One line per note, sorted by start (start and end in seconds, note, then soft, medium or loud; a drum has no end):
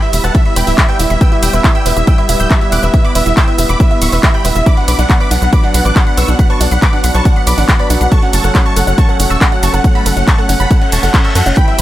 0.00 4.62 G3 medium
0.00 8.08 B3 medium
0.00 4.62 E4 loud
0.00 0.12 E4 medium
0.00 0.11 E5 medium
0.00 closed hi-hat soft
0.13 0.20 E1 loud
0.13 0.22 E5 medium
0.13 0.19 B5 medium
0.13 open hi-hat loud
0.13 ride medium
0.13 shaker medium
0.24 0.31 E1 medium
0.24 0.30 B4 medium
0.24 0.33 F#5 medium
0.24 0.33 A5 medium
0.24 closed hi-hat medium
0.24 shaker soft
0.35 0.44 E4 medium
0.35 0.43 E5 medium
0.35 0.44 E5 medium
0.35 kick loud
0.35 closed hi-hat medium
0.35 shaker soft
0.45 0.54 E5 medium
0.45 0.52 B5 medium
0.45 closed hi-hat soft
0.56 0.63 E1 loud
0.56 0.62 B4 medium
0.56 0.65 G5 medium
0.56 0.65 B5 loud
0.56 open hi-hat loud
0.56 ride medium
0.56 shaker medium
0.67 0.74 D1 medium
0.67 0.76 E4 medium
0.67 0.76 E5 medium
0.67 open hi-hat medium
0.67 shaker soft
0.78 0.87 E5 medium
0.78 0.84 B5 medium
0.78 kick loud
0.78 clap loud
0.78 closed hi-hat medium
0.78 shaker soft
0.88 0.95 B4 medium
0.88 0.98 E5 medium
0.88 0.97 G5 medium
0.88 0.98 G5 medium
0.88 closed hi-hat soft
0.99 1.06 E1 medium
0.99 1.09 E4 medium
0.99 1.08 E5 medium
0.99 open hi-hat loud
0.99 ride medium
0.99 shaker medium
1.10 1.17 E1 medium
1.10 1.19 E5 medium
1.10 1.16 B5 medium
1.10 closed hi-hat medium
1.10 shaker soft
1.21 1.27 B4 medium
1.21 1.30 G5 medium
1.21 1.30 E6 loud
1.21 kick loud
1.21 closed hi-hat medium
1.21 shaker soft
1.32 1.41 E4 medium
1.32 1.41 E5 medium
1.32 closed hi-hat soft
1.42 1.49 E1 medium
1.42 1.51 G5 medium
1.42 1.49 B5 medium
1.42 1.51 E6 medium
1.42 open hi-hat loud
1.42 ride medium
1.42 shaker medium
1.53 1.60 E1 medium
1.53 1.60 B4 medium
1.53 1.62 E5 medium
1.53 shaker soft
1.64 1.73 E4 medium
1.64 1.73 E5 medium
1.64 kick loud
1.64 clap loud
1.64 closed hi-hat medium
1.64 shaker soft
1.75 1.84 G5 medium
1.75 1.81 B5 medium
1.75 1.84 E6 loud
1.75 closed hi-hat soft
1.86 1.92 E1 loud
1.86 1.92 B4 medium
1.86 1.95 E5 medium
1.86 open hi-hat loud
1.86 ride medium
1.86 shaker medium
1.96 2.03 E1 medium
1.96 2.06 E4 medium
1.96 2.05 E5 medium
1.96 2.06 E5 medium
1.96 closed hi-hat medium
1.96 shaker soft
2.07 2.16 G5 medium
2.07 2.13 B5 medium
2.07 2.16 E6 loud
2.07 2.16 E6 medium
2.07 kick loud
2.07 closed hi-hat medium
2.07 shaker soft
2.18 2.24 B4 medium
2.18 2.27 E5 medium
2.18 closed hi-hat soft
2.29 2.36 E1 loud
2.29 2.38 E4 medium
2.29 2.38 E5 medium
2.29 open hi-hat loud
2.29 ride medium
2.29 shaker medium
2.40 2.46 D1 medium
2.40 2.46 B5 medium
2.40 2.49 E6 medium
2.40 2.49 G6 medium
2.40 2.49 G6 loud
2.40 closed hi-hat medium
2.40 shaker soft
2.51 2.57 B4 medium
2.51 2.59 E5 medium
2.51 kick loud
2.51 clap loud
2.51 closed hi-hat soft
2.51 shaker soft
2.61 2.71 E4 medium
2.61 2.70 E5 medium
2.61 closed hi-hat soft
2.72 2.79 E1 medium
2.72 2.78 B5 medium
2.72 2.81 D6 medium
2.72 2.81 F#6 loud
2.72 open hi-hat loud
2.72 ride medium
2.72 shaker medium
2.83 2.90 E1 medium
2.83 2.89 B4 medium
2.83 2.92 E5 medium
2.83 closed hi-hat medium
2.83 shaker soft
2.94 3.03 E4 medium
2.94 3.03 E5 medium
2.94 kick loud
2.94 closed hi-hat medium
2.94 shaker soft
3.04 3.11 B5 medium
3.04 3.13 B5 medium
3.04 3.13 D6 loud
3.04 closed hi-hat soft
3.15 3.22 E1 medium
3.15 3.21 B4 medium
3.15 3.24 E5 medium
3.15 open hi-hat loud
3.15 ride medium
3.15 shaker medium
3.26 3.33 E1 medium
3.26 3.35 E4 medium
3.26 3.35 E5 medium
3.26 closed hi-hat soft
3.26 shaker soft
3.37 3.46 G5 medium
3.37 3.43 B5 medium
3.37 3.46 E6 medium
3.37 kick loud
3.37 clap loud
3.37 closed hi-hat soft
3.37 shaker soft
3.48 3.54 B4 medium
3.48 3.57 E5 medium
3.48 closed hi-hat soft
3.58 3.65 E1 loud
3.58 3.68 E4 medium
3.58 3.67 E5 medium
3.58 open hi-hat loud
3.58 ride medium
3.58 shaker medium
3.69 3.76 E1 medium
3.69 3.75 B5 medium
3.69 3.78 B5 medium
3.69 3.78 D6 loud
3.69 3.78 D6 medium
3.69 closed hi-hat medium
3.69 shaker soft
3.80 3.86 B4 medium
3.80 3.89 E5 medium
3.80 kick loud
3.80 closed hi-hat soft
3.80 shaker soft
3.91 4.00 E4 medium
3.91 4.00 E5 medium
3.91 closed hi-hat soft
4.02 4.08 D1 loud
4.02 4.10 E5 medium
4.02 4.08 B5 medium
4.02 4.10 C#6 loud
4.02 4.11 C#6 medium
4.02 open hi-hat loud
4.02 ride medium
4.02 shaker medium
4.12 4.19 E1 medium
4.12 4.19 B4 medium
4.12 4.21 E5 medium
4.12 open hi-hat medium
4.12 shaker soft
4.23 4.32 E4 medium
4.23 4.32 E5 medium
4.23 kick loud
4.23 clap loud
4.23 closed hi-hat medium
4.23 shaker soft
4.34 4.43 G5 medium
4.34 4.43 B5 medium
4.34 4.40 B5 medium
4.34 4.43 B5 loud
4.34 closed hi-hat soft
4.45 4.51 E1 medium
4.45 4.51 B4 medium
4.45 4.54 E5 medium
4.45 open hi-hat loud
4.45 ride medium
4.45 shaker medium
4.56 4.62 E1 medium
4.56 4.65 E4 medium
4.56 4.64 E5 medium
4.56 4.65 E5 medium
4.56 closed hi-hat soft
4.56 shaker soft
4.66 11.53 F#3 medium
4.66 4.76 D4 medium
4.66 8.08 D4 medium
4.66 4.75 B5 medium
4.66 4.75 D6 loud
4.66 kick loud
4.66 closed hi-hat soft
4.66 shaker soft
4.77 4.86 F#5 medium
4.77 4.83 B5 medium
4.77 closed hi-hat soft
4.88 4.95 B1 medium
4.88 4.94 B4 medium
4.88 4.97 B5 medium
4.88 4.97 D6 medium
4.88 4.97 D6 loud
4.88 open hi-hat loud
4.88 ride medium
4.88 shaker medium
4.99 5.05 B1 medium
4.99 5.08 D4 medium
4.99 5.08 F#5 medium
4.99 closed hi-hat soft
4.99 shaker soft
5.09 5.18 F#5 medium
5.09 5.16 B5 medium
5.09 kick loud
5.09 clap loud
5.09 closed hi-hat soft
5.09 shaker soft
5.20 5.26 B4 medium
5.20 5.29 B5 medium
5.20 5.29 D6 loud
5.20 closed hi-hat soft
5.31 5.38 B1 loud
5.31 5.40 D4 medium
5.31 5.40 F#5 medium
5.31 open hi-hat loud
5.31 ride medium
5.31 shaker medium
5.42 5.49 B1 medium
5.42 5.51 F#5 medium
5.42 5.48 B5 medium
5.42 closed hi-hat medium
5.42 shaker soft
5.53 5.59 B4 medium
5.53 5.62 B5 medium
5.53 5.62 D6 loud
5.53 5.62 D6 medium
5.53 kick loud
5.53 closed hi-hat medium
5.53 shaker soft
5.63 5.73 D4 medium
5.63 5.72 F#5 medium
5.63 closed hi-hat soft
5.74 5.81 B1 loud
5.74 5.83 F#5 medium
5.74 5.80 B5 medium
5.74 open hi-hat loud
5.74 ride medium
5.74 shaker medium
5.85 5.92 A1 medium
5.85 5.91 B4 medium
5.85 5.94 D6 medium
5.85 5.94 F#6 medium
5.85 closed hi-hat medium
5.85 shaker soft
5.96 6.05 D4 medium
5.96 6.05 F#5 medium
5.96 kick loud
5.96 clap loud
5.96 closed hi-hat soft
5.96 shaker soft
6.07 6.16 F#5 medium
6.07 6.13 B5 medium
6.07 closed hi-hat soft
6.17 6.24 B1 loud
6.17 6.24 B4 medium
6.17 6.26 C#6 medium
6.17 6.26 E6 loud
6.17 open hi-hat loud
6.17 ride medium
6.17 shaker medium
6.28 6.35 B1 medium
6.28 6.37 D4 medium
6.28 6.37 F#5 medium
6.28 closed hi-hat medium
6.28 shaker soft
6.39 6.48 F#5 medium
6.39 6.45 B5 medium
6.39 kick loud
6.39 closed hi-hat medium
6.39 shaker soft
6.50 6.56 B4 medium
6.50 6.59 A5 medium
6.50 6.59 C#6 loud
6.50 closed hi-hat soft
6.61 6.67 B1 medium
6.61 6.70 D4 medium
6.61 6.69 F#5 medium
6.61 6.70 F#5 medium
6.61 open hi-hat loud
6.61 ride medium
6.61 shaker medium
6.71 6.78 B1 medium
6.71 6.80 F#5 medium
6.71 6.77 B5 medium
6.71 closed hi-hat medium
6.71 shaker soft
6.82 6.88 B4 medium
6.82 6.91 B5 medium
6.82 6.91 D6 medium
6.82 kick loud
6.82 clap loud
6.82 closed hi-hat medium
6.82 shaker soft
6.93 7.02 D4 medium
6.93 7.02 F#5 medium
6.93 closed hi-hat soft
7.04 7.10 B1 loud
7.04 7.13 F#5 medium
7.04 7.10 B5 medium
7.04 open hi-hat loud
7.04 ride medium
7.04 shaker medium
7.14 7.21 B1 medium
7.14 7.21 B4 medium
7.14 7.24 A5 medium
7.14 7.23 C#6 medium
7.14 closed hi-hat medium
7.14 shaker soft
7.25 7.34 D4 medium
7.25 7.34 F#5 medium
7.25 kick loud
7.25 closed hi-hat medium
7.25 shaker soft
7.36 7.45 F#5 medium
7.36 7.42 B5 medium
7.36 closed hi-hat soft
7.47 7.54 B1 loud
7.47 7.53 B4 medium
7.47 7.56 B5 medium
7.47 7.56 D6 loud
7.47 open hi-hat loud
7.47 ride medium
7.47 shaker medium
7.58 7.64 A1 medium
7.58 7.67 D4 medium
7.58 7.67 F#5 medium
7.58 open hi-hat medium
7.58 shaker soft
7.68 7.77 F#5 medium
7.68 7.75 B5 medium
7.68 kick loud
7.68 clap loud
7.68 closed hi-hat medium
7.68 shaker soft
7.79 7.85 B4 medium
7.79 7.88 D5 medium
7.79 7.88 B5 medium
7.79 7.88 B5 loud
7.79 closed hi-hat soft
7.90 7.97 B1 loud
7.90 7.99 D4 medium
7.90 7.99 F#5 medium
7.90 open hi-hat medium
7.90 ride medium
7.90 shaker medium
8.01 8.07 B1 medium
8.01 8.10 F#5 medium
8.01 8.07 B5 medium
8.01 closed hi-hat medium
8.01 shaker soft
8.12 11.54 A3 medium
8.12 11.54 C#4 loud
8.12 8.18 A4 medium
8.12 8.21 A5 medium
8.12 8.21 C#6 loud
8.12 kick loud
8.12 closed hi-hat medium
8.12 shaker soft
8.22 8.32 C#4 medium
8.22 8.31 F#5 medium
8.22 closed hi-hat soft
8.33 8.40 F#1 medium
8.33 8.39 A5 medium
8.33 8.42 A5 medium
8.33 8.42 C#6 loud
8.33 8.42 C#6 medium
8.33 open hi-hat loud
8.33 ride medium
8.33 shaker medium
8.44 8.51 F#1 medium
8.44 8.50 A4 medium
8.44 8.53 F#5 medium
8.44 closed hi-hat medium
8.44 shaker soft
8.55 8.64 C#4 medium
8.55 8.64 F#5 medium
8.55 kick loud
8.55 clap loud
8.55 closed hi-hat medium
8.55 shaker soft
8.66 8.72 A5 medium
8.66 8.75 A5 medium
8.66 8.75 C#6 loud
8.66 closed hi-hat soft
8.76 8.83 F#1 loud
8.76 8.82 A4 medium
8.76 8.85 F#5 medium
8.76 open hi-hat loud
8.76 ride medium
8.76 shaker medium
8.87 8.94 F#1 medium
8.87 8.96 C#4 medium
8.87 8.96 F#5 medium
8.87 closed hi-hat medium
8.87 shaker soft
8.98 9.04 A5 medium
8.98 9.07 A5 medium
8.98 9.07 C#6 loud
8.98 kick loud
8.98 closed hi-hat medium
8.98 shaker soft
9.09 9.15 A4 medium
9.09 9.18 F#5 medium
9.09 closed hi-hat soft
9.20 9.26 F#1 loud
9.20 9.29 C#4 medium
9.20 9.28 F#5 medium
9.20 9.29 F#5 medium
9.20 open hi-hat loud
9.20 ride medium
9.20 shaker medium
9.30 9.37 E1 medium
9.30 9.36 A5 medium
9.30 9.39 C#6 medium
9.30 9.39 E6 loud
9.30 closed hi-hat medium
9.30 shaker soft
9.41 9.47 A4 medium
9.41 9.50 F#5 medium
9.41 kick loud
9.41 clap loud
9.41 closed hi-hat medium
9.41 shaker soft
9.52 9.61 C#4 medium
9.52 9.61 F#5 medium
9.52 closed hi-hat soft
9.63 9.69 F#1 medium
9.63 9.69 A5 medium
9.63 9.72 A5 medium
9.63 9.72 C#6 loud
9.63 open hi-hat loud
9.63 ride medium
9.63 shaker medium
9.73 9.80 F#1 medium
9.73 9.80 A4 medium
9.73 9.82 F#5 medium
9.73 closed hi-hat medium
9.73 shaker soft
9.84 9.94 C#4 medium
9.84 9.93 F#5 medium
9.84 kick loud
9.84 closed hi-hat medium
9.84 shaker soft
9.95 10.04 F#5 medium
9.95 10.01 A5 medium
9.95 10.04 B5 medium
9.95 closed hi-hat soft
10.06 10.13 F#1 medium
10.06 10.12 A4 medium
10.06 10.15 F#5 medium
10.06 open hi-hat loud
10.06 ride medium
10.06 shaker medium
10.17 10.23 F#1 medium
10.17 10.26 C#4 medium
10.17 10.26 F#5 medium
10.17 closed hi-hat medium
10.17 shaker soft
10.27 10.34 A5 medium
10.27 10.36 A5 medium
10.27 10.36 C#6 medium
10.27 kick loud
10.27 clap loud
10.27 closed hi-hat medium
10.27 shaker soft
10.38 10.44 A4 medium
10.38 10.47 F#5 medium
10.38 closed hi-hat soft
10.49 10.56 F#1 loud
10.49 10.58 C#4 medium
10.49 10.58 F#5 medium
10.49 open hi-hat loud
10.49 ride medium
10.49 shaker medium
10.60 10.67 F#1 medium
10.60 10.69 F#5 medium
10.60 10.66 A5 medium
10.60 10.69 B5 medium
10.60 10.69 B5 loud
10.60 closed hi-hat medium
10.60 shaker soft
10.71 10.77 A4 medium
10.71 10.80 F#5 medium
10.71 kick loud
10.71 closed hi-hat medium
10.71 reverse cymbal medium
10.71 shaker soft
10.81 10.91 C#4 medium
10.81 10.90 F#5 medium
10.81 closed hi-hat soft
10.92 10.99 E1 loud
10.92 10.98 A5 medium
10.92 11.01 A5 medium
10.92 11.01 C#6 loud
10.92 open hi-hat loud
10.92 ride medium
10.92 shaker medium
11.03 11.10 F#1 medium
11.03 11.09 A4 medium
11.03 11.12 F#5 medium
11.03 open hi-hat medium
11.03 shaker soft
11.14 11.23 C#4 medium
11.14 11.23 F#5 medium
11.14 kick loud
11.14 clap loud
11.14 closed hi-hat medium
11.14 shaker soft
11.25 11.31 A5 medium
11.25 11.34 C#6 medium
11.25 11.33 E6 medium
11.25 closed hi-hat soft
11.35 11.42 F#2 medium
11.35 11.42 A4 medium
11.35 11.44 F#5 medium
11.35 open hi-hat loud
11.35 ride medium
11.35 shaker medium
11.46 11.53 F#1 medium
11.46 11.55 C#4 medium
11.46 11.55 F#5 medium
11.46 closed hi-hat medium
11.46 shaker soft
11.57 11.82 E3 medium
11.57 11.82 G3 medium
11.57 11.82 B3 medium
11.57 11.66 E4 medium
11.57 11.66 G5 medium
11.57 11.82 G5 loud
11.57 11.66 B5 medium
11.57 11.66 B5 loud
11.57 kick loud
11.57 closed hi-hat medium
11.57 shaker soft
11.68 11.77 E5 medium
11.68 11.74 B5 medium
11.68 closed hi-hat soft
11.78 11.82 E1 loud
11.78 11.82 B4 medium
11.78 11.82 G5 medium
11.78 11.82 B5 medium
11.78 11.82 B5 loud
11.78 open hi-hat loud
11.78 ride medium
11.78 shaker medium